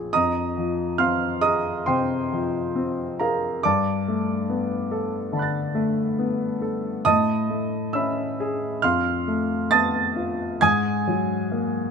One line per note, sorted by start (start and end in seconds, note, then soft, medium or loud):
0.00 0.14 A#1 soft
0.00 0.14 F3 soft
0.00 0.14 C4 soft
0.00 0.12 G#4 soft
0.13 1.83 F2 medium
0.13 0.96 D#5 medium
0.13 0.95 A#5 medium
0.13 0.99 D#6 medium
0.57 1.25 F3 soft
0.98 1.68 C4 soft
0.98 1.39 F5 medium
0.98 1.39 C6 medium
0.98 1.41 F6 medium
1.41 2.12 G#4 soft
1.41 1.82 D#5 medium
1.41 1.82 A#5 medium
1.41 1.85 D#6 medium
1.86 2.57 C3 soft
1.86 3.15 C5 medium
1.86 3.15 G5 medium
1.86 3.19 C6 medium
2.32 3.02 F3 soft
2.75 3.45 C4 soft
3.19 3.63 G#4 soft
3.19 3.60 A#4 medium
3.19 3.60 F5 medium
3.19 3.63 A#5 medium
3.63 5.30 G2 medium
3.63 6.59 D5 medium
3.63 5.32 A5 medium
3.63 6.62 D6 medium
4.08 4.74 A3 soft
4.50 5.16 B3 soft
4.91 5.58 A4 soft
5.32 6.01 D3 soft
5.32 7.02 A5 soft
5.37 7.03 B5 soft
5.37 7.05 F#6 soft
5.42 7.06 A6 soft
5.75 6.44 A3 soft
6.19 6.88 B3 soft
6.62 7.05 A4 soft
7.05 8.79 A2 medium
7.05 7.91 D#5 medium
7.05 7.91 A5 medium
7.05 7.94 D#6 loud
7.50 8.22 A3 soft
7.93 8.65 C#4 soft
7.93 8.79 E5 medium
7.93 8.79 B5 medium
7.93 8.82 E6 medium
8.40 8.83 G#4 medium
8.82 10.57 F2 medium
8.82 9.67 F5 medium
8.82 9.67 C6 medium
8.82 9.70 F6 medium
9.28 9.98 A3 soft
9.71 10.43 B3 soft
9.71 10.57 A5 medium
9.71 10.57 D#6 medium
9.71 10.61 A6 medium
10.16 10.61 F4 soft
10.61 11.91 G#2 medium
10.61 11.91 G#5 medium
10.61 11.91 D#6 medium
10.61 11.91 G#6 loud
11.07 11.78 F#3 soft
11.52 11.91 A#3 soft